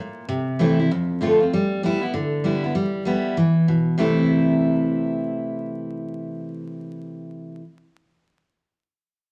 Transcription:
0, 0, Header, 1, 2, 480
1, 0, Start_track
1, 0, Key_signature, 0, "major"
1, 0, Tempo, 307850
1, 446, Time_signature, 4, 2, 24, 8
1, 14522, End_track
2, 0, Start_track
2, 0, Title_t, "Steel-string acoustic guitar"
2, 0, Program_c, 0, 25
2, 0, Note_on_c, 0, 46, 87
2, 423, Note_off_c, 0, 46, 0
2, 445, Note_on_c, 0, 48, 99
2, 923, Note_on_c, 0, 52, 97
2, 935, Note_on_c, 0, 57, 94
2, 949, Note_on_c, 0, 60, 102
2, 955, Note_on_c, 0, 64, 99
2, 1216, Note_off_c, 0, 52, 0
2, 1219, Note_off_c, 0, 64, 0
2, 1222, Note_off_c, 0, 57, 0
2, 1229, Note_off_c, 0, 60, 0
2, 1238, Note_on_c, 0, 64, 64
2, 1274, Note_on_c, 0, 60, 54
2, 1369, Note_off_c, 0, 48, 0
2, 1402, Note_off_c, 0, 64, 0
2, 1420, Note_off_c, 0, 60, 0
2, 1424, Note_on_c, 0, 41, 97
2, 1881, Note_on_c, 0, 50, 82
2, 1896, Note_on_c, 0, 57, 85
2, 1909, Note_on_c, 0, 65, 100
2, 1911, Note_on_c, 0, 60, 97
2, 2169, Note_off_c, 0, 65, 0
2, 2175, Note_off_c, 0, 50, 0
2, 2182, Note_off_c, 0, 57, 0
2, 2188, Note_on_c, 0, 65, 68
2, 2190, Note_off_c, 0, 60, 0
2, 2221, Note_on_c, 0, 60, 54
2, 2338, Note_off_c, 0, 41, 0
2, 2356, Note_off_c, 0, 65, 0
2, 2373, Note_off_c, 0, 60, 0
2, 2391, Note_on_c, 0, 55, 103
2, 2838, Note_off_c, 0, 55, 0
2, 2857, Note_on_c, 0, 55, 99
2, 2868, Note_on_c, 0, 59, 93
2, 2895, Note_on_c, 0, 64, 113
2, 3122, Note_off_c, 0, 64, 0
2, 3141, Note_on_c, 0, 64, 58
2, 3142, Note_off_c, 0, 55, 0
2, 3147, Note_off_c, 0, 59, 0
2, 3165, Note_on_c, 0, 59, 55
2, 3312, Note_off_c, 0, 64, 0
2, 3324, Note_off_c, 0, 59, 0
2, 3331, Note_on_c, 0, 50, 95
2, 3804, Note_on_c, 0, 55, 79
2, 3815, Note_on_c, 0, 59, 84
2, 3830, Note_on_c, 0, 64, 81
2, 4094, Note_off_c, 0, 64, 0
2, 4095, Note_off_c, 0, 55, 0
2, 4100, Note_off_c, 0, 59, 0
2, 4112, Note_on_c, 0, 64, 62
2, 4140, Note_on_c, 0, 59, 47
2, 4251, Note_off_c, 0, 50, 0
2, 4278, Note_off_c, 0, 64, 0
2, 4288, Note_on_c, 0, 55, 92
2, 4292, Note_off_c, 0, 59, 0
2, 4740, Note_off_c, 0, 55, 0
2, 4759, Note_on_c, 0, 55, 86
2, 4780, Note_on_c, 0, 59, 102
2, 4786, Note_on_c, 0, 64, 99
2, 5222, Note_off_c, 0, 55, 0
2, 5233, Note_off_c, 0, 59, 0
2, 5236, Note_off_c, 0, 64, 0
2, 5256, Note_on_c, 0, 52, 92
2, 5711, Note_off_c, 0, 52, 0
2, 5740, Note_on_c, 0, 47, 77
2, 6193, Note_off_c, 0, 47, 0
2, 6200, Note_on_c, 0, 48, 86
2, 6213, Note_on_c, 0, 52, 97
2, 6221, Note_on_c, 0, 57, 84
2, 6234, Note_on_c, 0, 60, 100
2, 6242, Note_on_c, 0, 64, 102
2, 11856, Note_off_c, 0, 48, 0
2, 11869, Note_off_c, 0, 52, 0
2, 11876, Note_off_c, 0, 57, 0
2, 11890, Note_off_c, 0, 60, 0
2, 11898, Note_off_c, 0, 64, 0
2, 14522, End_track
0, 0, End_of_file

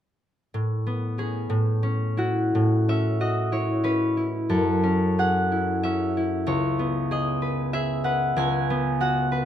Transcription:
0, 0, Header, 1, 2, 480
1, 0, Start_track
1, 0, Tempo, 648649
1, 388, Time_signature, 3, 2, 24, 8
1, 1342, Tempo, 690449
1, 2302, Tempo, 642398
1, 3262, Tempo, 709220
1, 3742, Tempo, 633580
1, 6971, End_track
2, 0, Start_track
2, 0, Title_t, "Harp"
2, 0, Program_c, 0, 46
2, 400, Note_on_c, 0, 45, 50
2, 640, Note_on_c, 0, 59, 46
2, 873, Note_on_c, 0, 61, 42
2, 879, Note_on_c, 0, 68, 49
2, 1098, Note_off_c, 0, 45, 0
2, 1107, Note_on_c, 0, 45, 60
2, 1124, Note_off_c, 0, 59, 0
2, 1126, Note_off_c, 0, 68, 0
2, 1344, Note_off_c, 0, 61, 0
2, 1352, Note_on_c, 0, 61, 60
2, 1591, Note_on_c, 0, 64, 46
2, 1598, Note_on_c, 0, 66, 52
2, 1844, Note_off_c, 0, 45, 0
2, 1852, Note_on_c, 0, 45, 51
2, 2081, Note_off_c, 0, 61, 0
2, 2088, Note_on_c, 0, 61, 45
2, 2091, Note_on_c, 0, 76, 66
2, 2302, Note_off_c, 0, 66, 0
2, 2310, Note_on_c, 0, 66, 39
2, 2312, Note_on_c, 0, 75, 62
2, 2537, Note_off_c, 0, 64, 0
2, 2545, Note_on_c, 0, 64, 38
2, 2549, Note_on_c, 0, 73, 58
2, 2716, Note_off_c, 0, 75, 0
2, 2774, Note_off_c, 0, 61, 0
2, 2781, Note_on_c, 0, 61, 48
2, 2786, Note_on_c, 0, 71, 60
2, 3022, Note_off_c, 0, 64, 0
2, 3031, Note_on_c, 0, 64, 37
2, 3272, Note_on_c, 0, 42, 49
2, 3273, Note_on_c, 0, 69, 59
2, 3291, Note_off_c, 0, 45, 0
2, 3494, Note_off_c, 0, 61, 0
2, 3502, Note_on_c, 0, 61, 47
2, 3599, Note_off_c, 0, 71, 0
2, 3740, Note_on_c, 0, 68, 46
2, 3744, Note_on_c, 0, 78, 71
2, 3982, Note_off_c, 0, 64, 0
2, 3991, Note_on_c, 0, 64, 41
2, 4222, Note_off_c, 0, 76, 0
2, 4229, Note_off_c, 0, 61, 0
2, 4231, Note_on_c, 0, 76, 76
2, 4238, Note_on_c, 0, 61, 45
2, 4476, Note_off_c, 0, 64, 0
2, 4485, Note_on_c, 0, 64, 41
2, 4703, Note_off_c, 0, 73, 0
2, 4710, Note_on_c, 0, 37, 57
2, 4714, Note_on_c, 0, 73, 64
2, 4731, Note_off_c, 0, 78, 0
2, 4736, Note_off_c, 0, 66, 0
2, 4736, Note_off_c, 0, 69, 0
2, 4738, Note_off_c, 0, 42, 0
2, 4956, Note_on_c, 0, 59, 47
2, 5191, Note_off_c, 0, 68, 0
2, 5197, Note_on_c, 0, 68, 54
2, 5204, Note_on_c, 0, 75, 74
2, 5432, Note_on_c, 0, 71, 48
2, 5660, Note_off_c, 0, 76, 0
2, 5666, Note_off_c, 0, 68, 0
2, 5669, Note_on_c, 0, 76, 82
2, 5675, Note_on_c, 0, 68, 57
2, 5901, Note_off_c, 0, 71, 0
2, 5904, Note_on_c, 0, 78, 72
2, 5910, Note_on_c, 0, 71, 47
2, 6014, Note_off_c, 0, 75, 0
2, 6141, Note_off_c, 0, 37, 0
2, 6148, Note_on_c, 0, 37, 62
2, 6155, Note_on_c, 0, 80, 78
2, 6172, Note_off_c, 0, 76, 0
2, 6175, Note_off_c, 0, 68, 0
2, 6179, Note_off_c, 0, 64, 0
2, 6319, Note_off_c, 0, 78, 0
2, 6394, Note_off_c, 0, 59, 0
2, 6403, Note_on_c, 0, 59, 60
2, 6633, Note_on_c, 0, 66, 57
2, 6637, Note_on_c, 0, 78, 75
2, 6860, Note_off_c, 0, 71, 0
2, 6869, Note_on_c, 0, 71, 52
2, 6959, Note_off_c, 0, 80, 0
2, 6971, Note_off_c, 0, 37, 0
2, 6971, Note_off_c, 0, 59, 0
2, 6971, Note_off_c, 0, 61, 0
2, 6971, Note_off_c, 0, 66, 0
2, 6971, Note_off_c, 0, 71, 0
2, 6971, Note_off_c, 0, 73, 0
2, 6971, Note_off_c, 0, 78, 0
2, 6971, End_track
0, 0, End_of_file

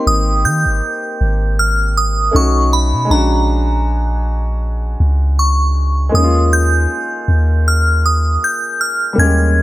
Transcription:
0, 0, Header, 1, 4, 480
1, 0, Start_track
1, 0, Key_signature, -4, "major"
1, 0, Tempo, 759494
1, 35, Time_signature, 4, 2, 24, 8
1, 6083, End_track
2, 0, Start_track
2, 0, Title_t, "Synth bell"
2, 0, Program_c, 0, 98
2, 46, Note_on_c, 0, 87, 95
2, 285, Note_on_c, 0, 91, 96
2, 288, Note_off_c, 0, 87, 0
2, 975, Note_off_c, 0, 91, 0
2, 1007, Note_on_c, 0, 89, 94
2, 1225, Note_off_c, 0, 89, 0
2, 1248, Note_on_c, 0, 87, 89
2, 1489, Note_off_c, 0, 87, 0
2, 1491, Note_on_c, 0, 85, 83
2, 1707, Note_off_c, 0, 85, 0
2, 1726, Note_on_c, 0, 83, 85
2, 1967, Note_on_c, 0, 82, 75
2, 1968, Note_off_c, 0, 83, 0
2, 2656, Note_off_c, 0, 82, 0
2, 3407, Note_on_c, 0, 85, 72
2, 3886, Note_on_c, 0, 87, 82
2, 3896, Note_off_c, 0, 85, 0
2, 4104, Note_off_c, 0, 87, 0
2, 4127, Note_on_c, 0, 91, 85
2, 4852, Note_on_c, 0, 89, 90
2, 4863, Note_off_c, 0, 91, 0
2, 5091, Note_off_c, 0, 89, 0
2, 5091, Note_on_c, 0, 87, 83
2, 5330, Note_off_c, 0, 87, 0
2, 5334, Note_on_c, 0, 91, 92
2, 5567, Note_on_c, 0, 89, 98
2, 5572, Note_off_c, 0, 91, 0
2, 5785, Note_off_c, 0, 89, 0
2, 5811, Note_on_c, 0, 92, 96
2, 6083, Note_off_c, 0, 92, 0
2, 6083, End_track
3, 0, Start_track
3, 0, Title_t, "Felt piano"
3, 0, Program_c, 1, 0
3, 0, Control_c, 1, 64, 127
3, 0, Note_on_c, 1, 58, 62
3, 0, Note_on_c, 1, 60, 56
3, 0, Note_on_c, 1, 63, 58
3, 0, Note_on_c, 1, 67, 72
3, 1437, Note_off_c, 1, 58, 0
3, 1446, Note_off_c, 1, 60, 0
3, 1455, Note_off_c, 1, 63, 0
3, 1461, Note_on_c, 1, 57, 60
3, 1463, Note_off_c, 1, 67, 0
3, 1470, Note_on_c, 1, 61, 59
3, 1479, Note_on_c, 1, 63, 54
3, 1483, Control_c, 1, 64, 0
3, 1486, Note_on_c, 1, 66, 70
3, 1612, Control_c, 1, 64, 127
3, 1927, Note_on_c, 1, 56, 62
3, 1935, Note_off_c, 1, 61, 0
3, 1945, Note_on_c, 1, 61, 56
3, 1949, Note_off_c, 1, 57, 0
3, 1957, Note_off_c, 1, 63, 0
3, 1961, Note_off_c, 1, 66, 0
3, 1963, Control_c, 1, 64, 0
3, 1963, Note_on_c, 1, 62, 58
3, 1978, Note_on_c, 1, 66, 74
3, 2091, Control_c, 1, 64, 127
3, 3836, Note_off_c, 1, 56, 0
3, 3845, Note_off_c, 1, 61, 0
3, 3850, Note_on_c, 1, 56, 64
3, 3854, Note_off_c, 1, 62, 0
3, 3862, Note_off_c, 1, 66, 0
3, 3867, Note_on_c, 1, 58, 56
3, 3883, Control_c, 1, 64, 0
3, 3885, Note_on_c, 1, 61, 56
3, 3903, Note_on_c, 1, 63, 54
3, 3934, Note_off_c, 1, 63, 0
3, 3942, Note_on_c, 1, 65, 69
3, 3987, Control_c, 1, 64, 127
3, 5758, Note_off_c, 1, 56, 0
3, 5766, Note_off_c, 1, 58, 0
3, 5770, Note_on_c, 1, 55, 50
3, 5775, Note_off_c, 1, 61, 0
3, 5785, Note_on_c, 1, 58, 57
3, 5804, Note_off_c, 1, 65, 0
3, 5804, Note_on_c, 1, 61, 59
3, 5811, Note_on_c, 1, 56, 61
3, 5821, Note_on_c, 1, 67, 70
3, 5827, Note_off_c, 1, 55, 0
3, 6083, Note_off_c, 1, 56, 0
3, 6083, Note_off_c, 1, 58, 0
3, 6083, Note_off_c, 1, 61, 0
3, 6083, Note_off_c, 1, 67, 0
3, 6083, End_track
4, 0, Start_track
4, 0, Title_t, "808-style bass"
4, 0, Program_c, 2, 38
4, 40, Note_on_c, 2, 32, 102
4, 279, Note_on_c, 2, 51, 94
4, 289, Note_off_c, 2, 32, 0
4, 410, Note_on_c, 2, 32, 91
4, 419, Note_off_c, 2, 51, 0
4, 513, Note_off_c, 2, 32, 0
4, 761, Note_on_c, 2, 32, 93
4, 1453, Note_off_c, 2, 32, 0
4, 1479, Note_on_c, 2, 35, 103
4, 1849, Note_on_c, 2, 47, 90
4, 1859, Note_off_c, 2, 35, 0
4, 1952, Note_off_c, 2, 47, 0
4, 1959, Note_on_c, 2, 34, 107
4, 3132, Note_off_c, 2, 34, 0
4, 3158, Note_on_c, 2, 37, 99
4, 3851, Note_off_c, 2, 37, 0
4, 3879, Note_on_c, 2, 39, 111
4, 4338, Note_off_c, 2, 39, 0
4, 4599, Note_on_c, 2, 39, 96
4, 5292, Note_off_c, 2, 39, 0
4, 5801, Note_on_c, 2, 39, 105
4, 6083, Note_off_c, 2, 39, 0
4, 6083, End_track
0, 0, End_of_file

